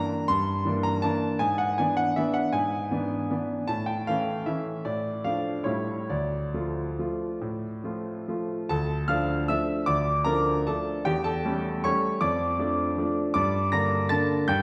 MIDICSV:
0, 0, Header, 1, 2, 480
1, 0, Start_track
1, 0, Key_signature, -1, "minor"
1, 0, Tempo, 373134
1, 370, Time_signature, 3, 2, 24, 8
1, 3733, Tempo, 390625
1, 6613, Tempo, 432900
1, 10453, Tempo, 392927
1, 14293, Tempo, 375704
1, 17832, End_track
2, 0, Start_track
2, 0, Title_t, "Grand piano"
2, 0, Program_c, 0, 0
2, 0, Note_on_c, 0, 52, 46
2, 0, Note_on_c, 0, 58, 43
2, 0, Note_on_c, 0, 62, 49
2, 0, Note_on_c, 0, 82, 88
2, 327, Note_off_c, 0, 52, 0
2, 330, Note_off_c, 0, 58, 0
2, 335, Note_off_c, 0, 62, 0
2, 361, Note_on_c, 0, 84, 96
2, 372, Note_off_c, 0, 82, 0
2, 381, Note_on_c, 0, 43, 59
2, 576, Control_c, 0, 64, 127
2, 833, Note_off_c, 0, 43, 0
2, 839, Note_on_c, 0, 52, 44
2, 857, Note_on_c, 0, 58, 42
2, 859, Note_on_c, 0, 62, 45
2, 1073, Note_on_c, 0, 82, 90
2, 1079, Note_off_c, 0, 84, 0
2, 1278, Note_off_c, 0, 52, 0
2, 1288, Note_off_c, 0, 58, 0
2, 1289, Note_off_c, 0, 62, 0
2, 1314, Note_on_c, 0, 81, 83
2, 1320, Note_on_c, 0, 52, 44
2, 1323, Note_off_c, 0, 82, 0
2, 1330, Note_on_c, 0, 58, 43
2, 1339, Note_on_c, 0, 62, 47
2, 1345, Control_c, 0, 64, 0
2, 1750, Note_off_c, 0, 52, 0
2, 1756, Note_off_c, 0, 58, 0
2, 1761, Note_off_c, 0, 62, 0
2, 1792, Note_on_c, 0, 80, 90
2, 1795, Note_off_c, 0, 81, 0
2, 1799, Note_on_c, 0, 44, 59
2, 2014, Control_c, 0, 64, 127
2, 2032, Note_off_c, 0, 80, 0
2, 2034, Note_on_c, 0, 78, 76
2, 2266, Note_off_c, 0, 44, 0
2, 2280, Note_off_c, 0, 78, 0
2, 2289, Note_on_c, 0, 80, 75
2, 2292, Control_c, 0, 64, 0
2, 2296, Note_on_c, 0, 52, 42
2, 2304, Note_on_c, 0, 59, 43
2, 2313, Note_on_c, 0, 62, 48
2, 2530, Note_on_c, 0, 78, 84
2, 2533, Note_off_c, 0, 80, 0
2, 2737, Note_off_c, 0, 52, 0
2, 2741, Note_off_c, 0, 59, 0
2, 2746, Note_off_c, 0, 62, 0
2, 2779, Note_off_c, 0, 78, 0
2, 2781, Note_on_c, 0, 76, 72
2, 2789, Note_on_c, 0, 52, 44
2, 2802, Note_on_c, 0, 59, 44
2, 2803, Note_on_c, 0, 62, 47
2, 3005, Note_on_c, 0, 78, 74
2, 3024, Note_off_c, 0, 76, 0
2, 3216, Note_off_c, 0, 52, 0
2, 3223, Note_off_c, 0, 59, 0
2, 3224, Note_off_c, 0, 62, 0
2, 3249, Note_off_c, 0, 78, 0
2, 3249, Note_on_c, 0, 80, 84
2, 3256, Note_on_c, 0, 44, 58
2, 3529, Control_c, 0, 64, 127
2, 3717, Note_off_c, 0, 44, 0
2, 3745, Note_on_c, 0, 52, 40
2, 3745, Note_on_c, 0, 59, 41
2, 3761, Note_on_c, 0, 62, 42
2, 4174, Note_off_c, 0, 52, 0
2, 4174, Note_off_c, 0, 59, 0
2, 4183, Note_off_c, 0, 62, 0
2, 4226, Control_c, 0, 64, 0
2, 4228, Note_on_c, 0, 59, 39
2, 4230, Note_on_c, 0, 52, 37
2, 4240, Note_on_c, 0, 62, 43
2, 4647, Note_off_c, 0, 59, 0
2, 4648, Note_off_c, 0, 52, 0
2, 4654, Note_off_c, 0, 62, 0
2, 4683, Note_off_c, 0, 80, 0
2, 4683, Note_on_c, 0, 81, 85
2, 4700, Note_on_c, 0, 45, 54
2, 4913, Note_on_c, 0, 79, 65
2, 4923, Note_off_c, 0, 81, 0
2, 4945, Control_c, 0, 64, 127
2, 5161, Note_off_c, 0, 45, 0
2, 5162, Note_off_c, 0, 79, 0
2, 5172, Note_on_c, 0, 77, 74
2, 5187, Note_on_c, 0, 57, 42
2, 5190, Note_on_c, 0, 52, 42
2, 5201, Note_on_c, 0, 61, 41
2, 5615, Note_off_c, 0, 57, 0
2, 5617, Note_off_c, 0, 52, 0
2, 5623, Note_off_c, 0, 61, 0
2, 5649, Note_on_c, 0, 76, 58
2, 5655, Note_off_c, 0, 77, 0
2, 5655, Note_on_c, 0, 52, 38
2, 5664, Note_on_c, 0, 57, 40
2, 5669, Note_on_c, 0, 61, 41
2, 5671, Control_c, 0, 64, 0
2, 6082, Note_off_c, 0, 52, 0
2, 6087, Note_off_c, 0, 57, 0
2, 6090, Note_off_c, 0, 61, 0
2, 6126, Note_on_c, 0, 74, 67
2, 6127, Note_off_c, 0, 76, 0
2, 6131, Note_on_c, 0, 45, 48
2, 6353, Control_c, 0, 64, 127
2, 6599, Note_off_c, 0, 45, 0
2, 6611, Note_off_c, 0, 74, 0
2, 6612, Note_on_c, 0, 77, 68
2, 6613, Note_on_c, 0, 53, 35
2, 6621, Note_on_c, 0, 57, 33
2, 6625, Note_on_c, 0, 62, 39
2, 7030, Note_off_c, 0, 53, 0
2, 7033, Note_off_c, 0, 57, 0
2, 7035, Note_off_c, 0, 62, 0
2, 7050, Note_on_c, 0, 73, 55
2, 7068, Note_on_c, 0, 45, 49
2, 7068, Note_on_c, 0, 57, 34
2, 7072, Note_on_c, 0, 55, 33
2, 7073, Note_off_c, 0, 77, 0
2, 7079, Note_on_c, 0, 64, 34
2, 7089, Control_c, 0, 64, 0
2, 7290, Control_c, 0, 64, 127
2, 7515, Note_off_c, 0, 57, 0
2, 7517, Note_off_c, 0, 55, 0
2, 7520, Note_off_c, 0, 64, 0
2, 7544, Note_off_c, 0, 45, 0
2, 7550, Note_off_c, 0, 73, 0
2, 7556, Note_on_c, 0, 74, 64
2, 7560, Note_on_c, 0, 38, 48
2, 7573, Control_c, 0, 64, 0
2, 7792, Control_c, 0, 64, 127
2, 8037, Note_off_c, 0, 38, 0
2, 8050, Note_on_c, 0, 53, 33
2, 8052, Note_on_c, 0, 57, 35
2, 8053, Note_on_c, 0, 65, 35
2, 8507, Note_off_c, 0, 53, 0
2, 8508, Note_off_c, 0, 57, 0
2, 8508, Note_off_c, 0, 65, 0
2, 8549, Note_on_c, 0, 53, 33
2, 8550, Note_on_c, 0, 57, 31
2, 8554, Note_on_c, 0, 65, 37
2, 8570, Control_c, 0, 64, 0
2, 8978, Note_off_c, 0, 53, 0
2, 8978, Note_off_c, 0, 57, 0
2, 8980, Note_off_c, 0, 65, 0
2, 9017, Note_on_c, 0, 45, 47
2, 9268, Control_c, 0, 64, 127
2, 9470, Note_off_c, 0, 45, 0
2, 9488, Note_on_c, 0, 53, 35
2, 9494, Note_on_c, 0, 57, 32
2, 9498, Note_on_c, 0, 65, 34
2, 9934, Note_off_c, 0, 53, 0
2, 9936, Note_off_c, 0, 57, 0
2, 9939, Note_off_c, 0, 65, 0
2, 9975, Note_off_c, 0, 74, 0
2, 9980, Note_on_c, 0, 53, 35
2, 9986, Note_on_c, 0, 57, 33
2, 9987, Control_c, 0, 64, 0
2, 9988, Note_on_c, 0, 65, 36
2, 10408, Note_off_c, 0, 53, 0
2, 10411, Note_off_c, 0, 57, 0
2, 10412, Note_off_c, 0, 65, 0
2, 10437, Note_on_c, 0, 81, 85
2, 10445, Note_on_c, 0, 38, 60
2, 10449, Note_on_c, 0, 69, 64
2, 10720, Control_c, 0, 64, 127
2, 10897, Note_off_c, 0, 69, 0
2, 10905, Note_on_c, 0, 89, 85
2, 10911, Note_on_c, 0, 53, 43
2, 10915, Note_off_c, 0, 38, 0
2, 10920, Note_on_c, 0, 77, 66
2, 10925, Note_off_c, 0, 81, 0
2, 10928, Note_on_c, 0, 57, 41
2, 10930, Note_on_c, 0, 62, 48
2, 11349, Note_off_c, 0, 53, 0
2, 11358, Note_off_c, 0, 57, 0
2, 11359, Note_off_c, 0, 62, 0
2, 11368, Note_off_c, 0, 77, 0
2, 11394, Note_off_c, 0, 89, 0
2, 11399, Note_on_c, 0, 88, 82
2, 11411, Note_on_c, 0, 53, 42
2, 11414, Note_on_c, 0, 57, 44
2, 11414, Note_on_c, 0, 76, 66
2, 11417, Note_on_c, 0, 62, 43
2, 11425, Control_c, 0, 64, 0
2, 11835, Note_off_c, 0, 53, 0
2, 11837, Note_off_c, 0, 57, 0
2, 11838, Note_off_c, 0, 62, 0
2, 11851, Note_off_c, 0, 76, 0
2, 11862, Note_on_c, 0, 86, 88
2, 11872, Note_on_c, 0, 38, 58
2, 11875, Note_on_c, 0, 74, 66
2, 11876, Note_off_c, 0, 88, 0
2, 12100, Control_c, 0, 64, 127
2, 12324, Note_off_c, 0, 74, 0
2, 12330, Note_on_c, 0, 82, 90
2, 12341, Note_off_c, 0, 38, 0
2, 12345, Note_on_c, 0, 53, 45
2, 12346, Note_on_c, 0, 57, 41
2, 12351, Note_off_c, 0, 86, 0
2, 12353, Note_on_c, 0, 70, 65
2, 12356, Note_on_c, 0, 62, 50
2, 12799, Note_off_c, 0, 53, 0
2, 12799, Note_off_c, 0, 57, 0
2, 12804, Note_off_c, 0, 62, 0
2, 12816, Note_off_c, 0, 70, 0
2, 12840, Note_off_c, 0, 82, 0
2, 12846, Note_on_c, 0, 81, 65
2, 12855, Note_on_c, 0, 69, 53
2, 12859, Note_on_c, 0, 57, 41
2, 12861, Note_on_c, 0, 53, 42
2, 12861, Note_on_c, 0, 62, 48
2, 12866, Control_c, 0, 64, 0
2, 13285, Note_off_c, 0, 57, 0
2, 13287, Note_off_c, 0, 53, 0
2, 13287, Note_off_c, 0, 62, 0
2, 13298, Note_off_c, 0, 69, 0
2, 13314, Note_on_c, 0, 79, 85
2, 13326, Note_on_c, 0, 40, 59
2, 13326, Note_on_c, 0, 67, 68
2, 13327, Note_off_c, 0, 81, 0
2, 13548, Note_off_c, 0, 67, 0
2, 13548, Note_on_c, 0, 81, 77
2, 13556, Note_on_c, 0, 69, 60
2, 13559, Note_off_c, 0, 79, 0
2, 13576, Control_c, 0, 64, 127
2, 13793, Note_off_c, 0, 40, 0
2, 13805, Note_on_c, 0, 55, 46
2, 13805, Note_on_c, 0, 57, 42
2, 13812, Note_on_c, 0, 61, 47
2, 14235, Note_off_c, 0, 69, 0
2, 14239, Note_off_c, 0, 55, 0
2, 14239, Note_off_c, 0, 57, 0
2, 14243, Note_off_c, 0, 61, 0
2, 14276, Note_on_c, 0, 85, 85
2, 14280, Note_off_c, 0, 81, 0
2, 14287, Note_on_c, 0, 55, 43
2, 14287, Note_on_c, 0, 61, 52
2, 14288, Note_on_c, 0, 73, 64
2, 14292, Note_on_c, 0, 57, 47
2, 14302, Control_c, 0, 64, 0
2, 14721, Note_off_c, 0, 55, 0
2, 14721, Note_off_c, 0, 61, 0
2, 14724, Note_off_c, 0, 57, 0
2, 14736, Note_off_c, 0, 73, 0
2, 14746, Note_on_c, 0, 86, 84
2, 14755, Note_on_c, 0, 41, 58
2, 14757, Note_on_c, 0, 74, 71
2, 14764, Note_off_c, 0, 85, 0
2, 14994, Control_c, 0, 64, 127
2, 15223, Note_off_c, 0, 41, 0
2, 15236, Note_on_c, 0, 53, 44
2, 15241, Note_on_c, 0, 62, 50
2, 15245, Note_on_c, 0, 57, 45
2, 15678, Note_off_c, 0, 53, 0
2, 15681, Note_off_c, 0, 62, 0
2, 15683, Note_off_c, 0, 57, 0
2, 15726, Note_on_c, 0, 53, 45
2, 15737, Note_on_c, 0, 57, 42
2, 15742, Control_c, 0, 64, 0
2, 15745, Note_on_c, 0, 62, 51
2, 15918, Note_off_c, 0, 74, 0
2, 15964, Note_off_c, 0, 86, 0
2, 16163, Note_off_c, 0, 53, 0
2, 16169, Note_off_c, 0, 57, 0
2, 16173, Note_off_c, 0, 62, 0
2, 16192, Note_on_c, 0, 86, 88
2, 16210, Note_on_c, 0, 43, 62
2, 16213, Note_on_c, 0, 74, 66
2, 16449, Control_c, 0, 64, 127
2, 16659, Note_off_c, 0, 74, 0
2, 16677, Note_off_c, 0, 43, 0
2, 16678, Note_on_c, 0, 94, 95
2, 16682, Note_off_c, 0, 86, 0
2, 16683, Note_on_c, 0, 50, 50
2, 16686, Note_on_c, 0, 58, 44
2, 16689, Note_on_c, 0, 82, 69
2, 16694, Note_on_c, 0, 62, 49
2, 17122, Note_off_c, 0, 50, 0
2, 17124, Note_off_c, 0, 58, 0
2, 17129, Note_off_c, 0, 62, 0
2, 17140, Note_off_c, 0, 82, 0
2, 17156, Note_on_c, 0, 93, 100
2, 17165, Note_on_c, 0, 50, 48
2, 17166, Note_on_c, 0, 81, 72
2, 17169, Note_off_c, 0, 94, 0
2, 17175, Note_on_c, 0, 58, 49
2, 17178, Note_on_c, 0, 62, 51
2, 17193, Control_c, 0, 64, 0
2, 17601, Note_off_c, 0, 50, 0
2, 17607, Note_off_c, 0, 58, 0
2, 17608, Note_off_c, 0, 62, 0
2, 17616, Note_off_c, 0, 81, 0
2, 17645, Note_off_c, 0, 93, 0
2, 17647, Note_on_c, 0, 91, 98
2, 17655, Note_on_c, 0, 43, 65
2, 17662, Note_on_c, 0, 79, 73
2, 17832, Note_off_c, 0, 43, 0
2, 17832, Note_off_c, 0, 79, 0
2, 17832, Note_off_c, 0, 91, 0
2, 17832, End_track
0, 0, End_of_file